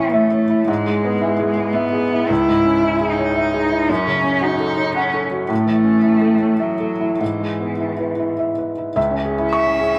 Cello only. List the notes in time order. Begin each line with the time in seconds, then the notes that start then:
Already playing: C#4
0.13 A3
0.67 G#3
1.47 G#3
1.73 B3
2.29 E4
3.10 D#4
3.89 C#4
4.43 D#4
4.97 C#4
5.52 A3
6.61 F#3
7.20 E3
8.97 C#4